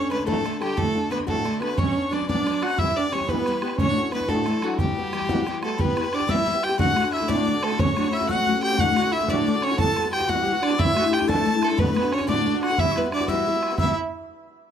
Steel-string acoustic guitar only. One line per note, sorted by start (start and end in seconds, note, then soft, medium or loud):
0.00 0.10 A3 soft
0.00 0.11 A4 soft
0.10 0.26 D3 medium
0.10 0.26 A3 medium
0.10 0.26 D4 medium
0.10 0.25 A4 medium
0.26 0.45 A2 medium
0.26 0.43 D3 medium
0.26 0.45 E3 medium
0.26 0.45 A3 medium
0.26 0.44 D4 medium
0.26 0.44 A4 medium
0.44 0.61 D3 medium
0.44 0.60 A3 medium
0.44 0.60 D4 medium
0.44 0.59 A4 medium
0.61 0.76 D3 soft
0.61 0.77 A3 soft
0.61 0.76 D4 soft
0.61 0.77 A4 medium
0.77 0.95 D2 medium
0.77 0.95 A2 medium
0.77 0.95 D3 medium
0.77 0.94 A3 medium
0.77 0.95 D4 medium
0.77 0.93 F#4 medium
0.94 1.09 D3 soft
0.94 1.11 A3 soft
0.94 1.10 D4 soft
0.94 1.11 F#4 soft
1.10 1.26 D3 medium
1.10 1.25 A3 medium
1.10 1.26 D4 medium
1.10 1.25 F#4 medium
1.27 1.46 D2 medium
1.27 1.45 A2 medium
1.27 1.43 D3 medium
1.27 1.45 A3 medium
1.27 1.44 D4 medium
1.27 1.45 F#4 medium
1.45 1.61 D3 medium
1.45 1.61 A3 medium
1.45 1.61 D4 medium
1.45 1.59 F#4 medium
1.61 1.77 D3 soft
1.61 1.78 A3 medium
1.61 1.77 D4 soft
1.61 1.78 F#4 medium
1.77 1.95 B2 medium
1.77 1.95 F#3 medium
1.77 1.96 B3 medium
1.77 1.96 C#4 medium
1.77 1.94 D4 medium
1.95 2.11 B3 soft
1.95 2.12 C#4 soft
1.95 2.12 D4 soft
2.11 2.28 F#3 medium
2.11 2.28 B3 medium
2.11 2.28 C#4 medium
2.11 2.27 D4 medium
2.29 2.47 B2 medium
2.29 2.45 F#3 medium
2.29 2.45 B3 medium
2.29 2.46 C#4 medium
2.29 2.46 D4 medium
2.46 2.62 F#3 medium
2.46 2.63 B3 medium
2.46 2.62 C#4 medium
2.46 2.61 D4 medium
2.62 2.78 B3 soft
2.62 2.79 C#4 soft
2.62 2.78 D4 medium
2.78 2.96 E3 medium
2.78 2.96 G3 medium
2.78 2.97 B3 medium
2.78 2.95 G4 medium
2.96 3.12 G3 soft
2.96 3.12 B3 soft
2.96 3.13 G4 soft
3.12 3.29 E3 medium
3.12 3.29 G3 medium
3.12 3.28 B3 medium
3.12 3.27 G4 medium
3.29 3.45 E3 medium
3.29 3.46 G3 medium
3.29 3.46 B3 medium
3.29 3.46 G4 medium
3.46 3.63 E3 medium
3.46 3.63 G3 medium
3.46 3.62 B3 medium
3.46 3.61 G4 medium
3.62 3.80 G3 soft
3.62 3.79 B3 soft
3.62 3.79 G4 medium
3.79 3.97 D2 medium
3.79 3.97 A2 medium
3.79 3.97 E3 medium
3.79 3.97 A3 medium
3.79 3.96 D4 medium
3.79 3.96 F#4 medium
3.97 4.11 E3 soft
3.97 4.12 A3 soft
3.97 4.13 D4 soft
3.97 4.13 F#4 medium
4.12 4.29 E3 medium
4.12 4.28 A3 medium
4.12 4.28 D4 medium
4.12 4.28 F#4 medium
4.29 4.47 D2 soft
4.29 4.47 A2 medium
4.29 4.45 E3 medium
4.29 4.46 A3 medium
4.29 4.46 D4 medium
4.29 4.47 F#4 medium
4.46 4.63 E3 medium
4.46 4.63 A3 medium
4.46 4.63 D4 medium
4.46 4.61 F#4 medium
4.62 4.78 E3 soft
4.62 4.79 A3 soft
4.62 4.80 D4 soft
4.62 4.79 F#4 medium
4.79 4.97 E3 medium
4.79 4.97 G3 medium
4.79 4.97 B3 medium
4.79 4.96 F#4 medium
4.97 5.12 G3 soft
4.97 5.13 B3 soft
4.97 5.13 F#4 soft
5.13 5.29 E3 medium
5.13 5.29 G3 medium
5.13 5.28 B3 medium
5.13 5.28 F#4 medium
5.29 5.45 E3 medium
5.29 5.46 G3 medium
5.29 5.46 B3 medium
5.29 5.47 F#4 medium
5.46 5.63 E3 medium
5.46 5.63 G3 medium
5.46 5.63 B3 medium
5.46 5.61 F#4 medium
5.62 5.78 G3 soft
5.62 5.78 B3 medium
5.62 5.79 F#4 medium
5.78 5.94 E3 medium
5.78 5.96 G3 medium
5.78 5.96 B3 medium
5.78 5.97 G4 medium
5.96 6.04 E3 medium
5.96 6.05 G3 medium
5.96 6.04 B3 medium
5.96 6.02 G4 medium
6.03 6.21 G3 soft
6.03 6.20 B3 soft
6.03 6.18 G4 soft
6.20 6.27 G3 soft
6.20 6.27 B3 medium
6.20 6.28 G4 medium
6.28 6.44 E3 medium
6.28 6.45 G3 medium
6.28 6.46 B3 medium
6.28 6.46 G4 medium
6.45 6.54 E3 medium
6.45 6.55 G3 medium
6.45 6.53 B3 medium
6.45 6.52 G4 medium
6.53 6.70 G3 soft
6.53 6.70 B3 medium
6.53 6.68 G4 soft
6.69 6.79 G3 medium
6.69 6.79 B3 medium
6.69 6.78 G4 medium
6.78 6.96 D2 medium
6.78 6.96 A2 medium
6.78 6.94 D3 medium
6.78 6.95 A3 medium
6.78 6.96 D4 medium
6.78 6.96 F#4 medium
6.95 7.04 D3 medium
6.95 7.04 A3 medium
6.95 7.03 D4 medium
6.95 7.02 F#4 medium
7.04 7.21 D3 soft
7.04 7.21 A3 soft
7.04 7.20 D4 medium
7.04 7.19 F#4 medium
7.20 7.27 D3 medium
7.20 7.27 A3 medium
7.20 7.28 D4 medium
7.20 7.28 F#4 medium
7.28 7.46 D2 medium
7.28 7.46 A2 medium
7.28 7.44 D3 loud
7.28 7.45 A3 loud
7.28 7.46 D4 loud
7.28 7.47 F#4 medium
7.46 7.54 D3 medium
7.46 7.54 A3 medium
7.46 7.53 D4 medium
7.46 7.52 F#4 medium
7.54 7.72 D3 medium
7.54 7.71 A3 soft
7.54 7.70 D4 medium
7.54 7.69 F#4 medium
7.70 7.78 D3 soft
7.70 7.78 A3 medium
7.70 7.79 D4 medium
7.70 7.79 F#4 medium
7.78 7.95 F#3 medium
7.78 7.96 A3 medium
7.78 7.96 C#4 medium
7.78 7.97 F#4 medium
7.96 8.04 F#3 medium
7.96 8.05 A3 medium
7.96 8.04 C#4 medium
7.96 8.03 F#4 medium
8.04 8.21 A3 soft
8.04 8.20 C#4 medium
8.04 8.20 F#4 medium
8.21 8.28 A3 soft
8.21 8.29 C#4 medium
8.21 8.29 F#4 medium
8.29 8.45 F#3 medium
8.29 8.46 A3 medium
8.29 8.47 C#4 medium
8.29 8.47 F#4 medium
8.47 8.55 F#3 medium
8.47 8.55 A3 medium
8.47 8.55 C#4 medium
8.47 8.54 F#4 medium
8.55 8.72 A3 soft
8.55 8.71 C#4 medium
8.55 8.70 F#4 medium
8.71 8.79 A3 soft
8.71 8.80 C#4 medium
8.71 8.79 F#4 medium
8.79 8.97 D2 medium
8.79 8.97 A2 medium
8.79 8.96 D3 medium
8.79 8.97 A3 medium
8.79 8.97 D4 medium
8.79 8.98 F#4 medium
8.97 9.05 D3 medium
8.97 9.05 A3 medium
8.97 9.04 D4 medium
8.97 9.03 F#4 medium
9.05 9.22 D3 soft
9.05 9.21 A3 soft
9.05 9.21 D4 soft
9.05 9.20 F#4 medium
9.21 9.29 D3 medium
9.21 9.29 A3 medium
9.21 9.29 D4 medium
9.21 9.29 F#4 medium
9.29 9.47 D2 medium
9.29 9.47 A2 loud
9.29 9.46 D3 loud
9.29 9.46 A3 medium
9.29 9.47 D4 medium
9.29 9.47 F#4 medium
9.47 9.55 D3 medium
9.47 9.55 A3 medium
9.47 9.54 D4 medium
9.47 9.54 F#4 medium
9.55 9.71 D3 soft
9.55 9.71 A3 soft
9.55 9.70 D4 medium
9.55 9.70 F#4 medium
9.71 9.78 D3 soft
9.71 9.79 A3 medium
9.71 9.79 D4 medium
9.71 9.79 F#4 medium
9.78 9.95 E3 medium
9.78 9.96 G3 medium
9.78 9.96 B3 medium
9.78 9.97 F#4 medium
9.96 10.04 E3 medium
9.96 10.05 G3 medium
9.96 10.04 B3 medium
9.96 10.03 F#4 medium
10.04 10.21 G3 soft
10.04 10.20 B3 soft
10.04 10.19 F#4 medium
10.20 10.27 G3 medium
10.20 10.27 B3 medium
10.20 10.28 F#4 medium
10.28 10.44 E3 medium
10.28 10.45 G3 medium
10.28 10.46 B3 medium
10.28 10.46 F#4 medium
10.45 10.54 E3 medium
10.45 10.54 G3 medium
10.45 10.53 B3 medium
10.45 10.52 F#4 medium
10.53 10.71 G3 soft
10.53 10.69 B3 medium
10.53 10.69 F#4 medium
10.70 10.78 G3 medium
10.70 10.79 B3 medium
10.70 10.78 F#4 medium
10.78 10.94 E3 medium
10.78 10.95 A3 medium
10.78 10.95 D4 medium
10.78 10.96 E4 medium
10.95 11.04 E3 medium
10.95 11.04 A3 medium
10.95 11.03 D4 medium
10.95 11.02 E4 medium
11.03 11.20 A3 soft
11.03 11.19 D4 soft
11.03 11.18 E4 medium
11.19 11.27 A3 soft
11.19 11.27 D4 medium
11.19 11.28 E4 medium
11.27 11.44 E3 medium
11.27 11.45 A3 loud
11.27 11.45 D4 loud
11.27 11.46 E4 medium
11.45 11.54 E3 medium
11.45 11.54 A3 medium
11.45 11.54 D4 medium
11.45 11.52 E4 medium
11.54 11.70 A3 soft
11.54 11.69 D4 medium
11.54 11.68 E4 medium
11.70 11.77 A3 soft
11.70 11.77 D4 medium
11.70 11.78 E4 medium
11.77 11.95 D2 medium
11.77 11.96 A2 medium
11.77 11.93 D3 medium
11.77 11.94 A3 medium
11.77 11.95 D4 medium
11.77 11.96 F#4 medium
11.94 12.03 D3 medium
11.94 12.03 A3 medium
11.94 12.02 D4 medium
11.94 12.01 F#4 medium
12.02 12.19 D3 soft
12.02 12.19 A3 soft
12.02 12.18 D4 medium
12.02 12.17 F#4 medium
12.18 12.26 D3 medium
12.18 12.27 A3 soft
12.18 12.27 D4 medium
12.18 12.27 F#4 medium
12.27 12.45 D2 medium
12.27 12.45 A2 medium
12.27 12.44 D3 medium
12.27 12.45 A3 medium
12.27 12.46 D4 medium
12.27 12.46 F#4 loud
12.46 12.54 D3 medium
12.46 12.54 A3 medium
12.46 12.54 D4 medium
12.46 12.53 F#4 medium
12.54 12.71 D3 soft
12.54 12.70 A3 medium
12.54 12.69 D4 medium
12.54 12.68 F#4 medium
12.70 12.78 D3 medium
12.70 12.78 A3 medium
12.70 12.78 D4 medium
12.70 12.78 F#4 medium
12.79 12.95 G3 medium
12.79 12.96 B3 medium
12.96 13.04 E3 medium
12.96 13.04 G3 medium
12.96 13.04 B3 medium
12.96 13.03 F#4 medium
13.04 13.21 G3 soft
13.04 13.21 B3 medium
13.04 13.19 F#4 soft
13.20 13.27 G3 soft
13.20 13.28 B3 medium
13.20 13.28 F#4 medium
13.28 13.45 E3 medium
13.28 13.46 G3 medium
13.28 13.46 B3 loud
13.28 13.46 F#4 loud
13.46 13.54 E3 medium
13.46 13.54 G3 medium
13.46 13.54 B3 medium
13.46 13.53 F#4 medium
13.54 13.72 G3 soft
13.54 13.71 B3 medium
13.54 13.69 F#4 medium
13.71 13.78 G3 medium
13.71 13.78 B3 medium
13.71 13.78 F#4 medium
13.78 13.92 E3 medium
13.78 13.93 G3 medium
13.78 13.93 B3 medium
13.78 13.93 F#4 medium